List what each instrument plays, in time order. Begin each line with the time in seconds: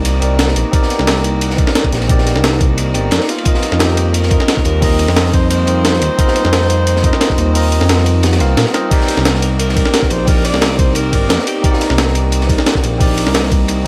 Already playing: analog synth bass C2, analog synth pad A#3 D#4 D5, tine electric piano C4 D#4 G4 A#4 D5
0.05 closed hi-hat, ride
0.20 analog synth bass C2, tine electric piano C4 D#4 G4 A#4, closed hi-hat, ride
0.24 tine electric piano D5
0.39 snare, closed hi-hat, ride
0.48 snare
0.56 analog synth bass A#1, closed hi-hat, ride
0.71 tine electric piano C4 D#4 G4 A#4, kick, closed hi-hat, ride
0.75 tine electric piano D5
0.83 snare
0.90 snare, closed hi-hat, ride
0.99 analog synth bass C2, snare
1.07 snare, closed hi-hat, ride
1.16 snare
1.24 closed hi-hat, ride
1.41 closed hi-hat, ride
1.50 snare
1.56 tine electric piano C4 D#4 G4 A#4, kick, closed hi-hat, ride
1.61 tine electric piano D5
1.67 snare
1.75 snare, closed hi-hat, ride
1.84 kick, ride
1.92 analog synth bass A#1, snare, closed hi-hat
2.02 snare, ride
2.07 tine electric piano C4 D#4 G4 A#4, kick, closed hi-hat, ride
2.12 tine electric piano D5
2.18 snare
2.27 snare, closed hi-hat, ride
2.36 analog synth bass C2, snare
2.44 snare, closed hi-hat, ride
2.52 snare
2.60 kick, closed hi-hat, ride
2.78 closed hi-hat, ride
2.94 analog synth bass G1, tine electric piano C4 D#4 G4 A#4 D5, closed hi-hat, ride
3.11 analog synth bass F2, snare, closed hi-hat, ride
3.20 snare
3.29 analog synth pad G3, alto saxophone F4, snare, closed hi-hat, ride
3.38 ride
3.44 tine electric piano C4 D#4 F4 A#4, kick, closed hi-hat, ride
3.48 tine electric piano D#5
3.55 snare
3.62 snare, closed hi-hat, ride
3.72 analog synth bass F2, snare
3.79 alto saxophone G4, snare, closed hi-hat, ride
3.88 snare
3.97 closed hi-hat, ride
4.14 alto saxophone A#4, closed hi-hat, ride
4.23 snare
4.29 tine electric piano C4 D#4 F4 A#4, kick, closed hi-hat, ride
4.33 tine electric piano D#5
4.40 snare
4.48 snare, closed hi-hat, ride
4.57 kick, snare
4.65 analog synth bass D#2, alto saxophone A#4, closed hi-hat, ride
4.80 tine electric piano C4 D#4 F4 A#4, kick, closed hi-hat, open hi-hat
4.84 tine electric piano D#5
4.99 closed hi-hat, ride
5.08 analog synth bass F2, snare
5.16 snare, closed hi-hat, ride
5.26 snare
5.33 alto saxophone C5, kick, closed hi-hat, ride
5.50 alto saxophone C5, closed hi-hat, ride
5.65 analog synth bass F2, tine electric piano C4 D#4 F4 A#4, closed hi-hat, ride
5.69 tine electric piano D#5
5.85 snare, closed hi-hat, ride
5.94 snare
6.02 analog synth bass D#2, closed hi-hat, ride
6.17 tine electric piano C4 D#4 F4 A#4, kick, closed hi-hat, ride
6.21 tine electric piano D#5
6.28 snare
6.35 snare, closed hi-hat, ride
6.45 analog synth bass F2, snare
6.53 snare, closed hi-hat, ride
6.62 snare
6.70 closed hi-hat, ride
6.87 closed hi-hat, ride
6.96 snare
7.02 tine electric piano C4 D#4 F4 A#4, kick, closed hi-hat, ride
7.06 tine electric piano D#5
7.13 snare
7.21 snare, closed hi-hat, ride
7.30 kick, snare
7.38 analog synth bass D#2, closed hi-hat, ride
7.53 tine electric piano C4 D#4 F4 A#4, closed hi-hat, open hi-hat
7.57 tine electric piano D#5
7.72 closed hi-hat, ride
7.81 analog synth bass F2, snare
7.89 snare, closed hi-hat, ride
7.98 snare
8.06 closed hi-hat, ride
8.23 snare, closed hi-hat, ride
8.33 snare, ride
8.39 analog synth bass C2, tine electric piano C4 D#4 F4 A#4 F5, closed hi-hat, ride
8.57 analog synth bass A#2, snare, closed hi-hat, ride
8.66 snare
8.73 tine electric piano C4 D#4 F4 A#4 D#5, alto saxophone F4, snare, closed hi-hat, ride
8.89 analog synth pad A#3 D#4 D6, tine electric piano C4 D#4 G4 A#4, alto saxophone G4, kick, closed hi-hat, crash, ride
8.93 tine electric piano D5
9.01 snare
9.08 snare, closed hi-hat, ride
9.17 analog synth bass C2, snare
9.25 alto saxophone A#4, snare, closed hi-hat, ride
9.35 snare
9.42 alto saxophone A#4, closed hi-hat, ride
9.59 alto saxophone A#4, closed hi-hat, ride
9.69 snare
9.75 tine electric piano C4 D#4 G4 A#4, kick, closed hi-hat, ride
9.79 tine electric piano D5
9.85 snare
9.94 snare, closed hi-hat, ride
10.03 kick, snare
10.10 analog synth bass A#1, alto saxophone C5, closed hi-hat, ride
10.26 tine electric piano C4 D#4 G4 A#4, alto saxophone A#4, kick, closed hi-hat, open hi-hat
10.30 tine electric piano D5
10.45 alto saxophone D5, closed hi-hat, ride
10.54 analog synth bass C2, snare
10.61 snare, closed hi-hat, ride
10.71 snare
10.79 alto saxophone C5, kick, closed hi-hat, ride
10.95 alto saxophone A#4, closed hi-hat, ride
11.11 analog synth bass G1, tine electric piano C4 D#4 G4 A#4, kick, closed hi-hat, ride
11.15 tine electric piano D5
11.29 analog synth bass F2, snare, closed hi-hat, ride
11.39 snare
11.47 alto saxophone G4, closed hi-hat, ride
11.62 tine electric piano C4 D#4 G4 A#4, kick, closed hi-hat, ride
11.66 tine electric piano D5
11.73 snare
11.81 snare, closed hi-hat, ride
11.90 analog synth bass C2, snare
11.98 snare, closed hi-hat, ride
12.07 snare
12.15 closed hi-hat, ride
12.32 closed hi-hat, ride
12.41 snare
12.47 tine electric piano C4 D#4 G4 A#4, kick, closed hi-hat, ride
12.51 tine electric piano D5
12.58 snare
12.66 snare, closed hi-hat, ride
12.75 kick, snare
12.84 analog synth bass A#1, closed hi-hat, ride
12.98 tine electric piano C4 D#4 G4 A#4, kick, closed hi-hat, open hi-hat
13.03 tine electric piano D5
13.18 closed hi-hat, ride
13.26 analog synth bass C2, snare
13.34 snare, closed hi-hat, ride
13.43 snare
13.52 kick, closed hi-hat, ride
13.68 closed hi-hat, ride